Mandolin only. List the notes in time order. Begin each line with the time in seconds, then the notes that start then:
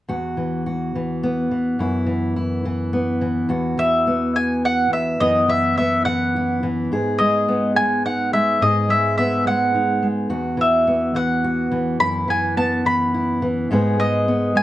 3.79 E5
4.36 G#5
4.65 F#5
4.93 E5
5.20 D#5
5.50 E5
5.78 E5
6.05 F#5
7.18 D#5
7.76 G#5
8.06 F#5
8.33 E5
8.62 D#5
8.90 E5
9.18 E5
9.47 F#5
10.61 E5
11.16 F#5
12.00 B5
12.30 G#5
12.57 A5
12.86 B5
14.00 D#5
14.57 G#5